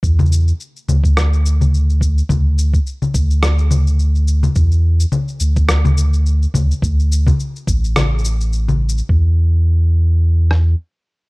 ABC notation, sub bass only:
X:1
M:4/4
L:1/8
Q:"Swing 16ths" 1/4=106
K:D
V:1 name="Sub bass" clef=bass
E,,2 z D,,4- D,, | D,,2 z D,,4- D,, | E,,2 z D,,4 D,, | D,,2 z A,,,4- A,,, |
E,,6 z2 |]